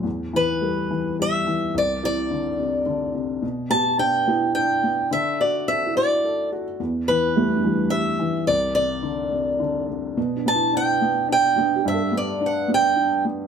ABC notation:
X:1
M:3/4
L:1/16
Q:1/4=107
K:G
V:1 name="Steel-string acoustic guitar"
z2 B6 e4 | d2 d8 z2 | z2 a2 g4 g4 | e2 d2 e2 d4 z2 |
z2 B6 e4 | d2 d8 z2 | z2 a2 g4 g4 | e2 d2 f2 g4 z2 |]
V:2 name="Felt piano"
z4 A6 z2 | z2 E6 z4 | z2 G4 E6 | z4 C E6 z |
B,4 A, D G,6 | z12 | B, D E6 z2 D G | A4 z2 D6 |]
V:3 name="Felt piano" clef=bass
E,,2 E,2 G,2 E,2 G,2 E,2 | C,,2 C,2 D,2 C,2 D,2 C,2 | B,,2 B,2 D2 B,2 D2 B,2 | D,2 F2 A2 F2 A2 F2 |
E,,2 E,2 G,2 E,2 G,2 E,2 | C,,2 C,2 D,2 C,2 D,2 C,2 | B,,2 B,2 D2 B,2 D2 B,2 | G,,2 B,2 D2 B,2 D2 B,2 |]